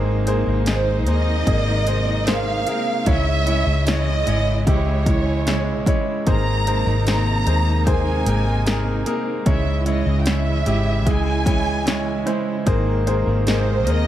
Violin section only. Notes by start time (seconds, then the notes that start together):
0.68 C5
1.09 D#5
2.29 F5
3.09 E5
3.89 D#5
4.69 C#5
6.28 A#5
7.08 A#5
7.89 G#5
9.48 E5
9.89 D#5
10.21 G5
10.29 E5
11.09 G#5
13.49 C5
13.89 D#5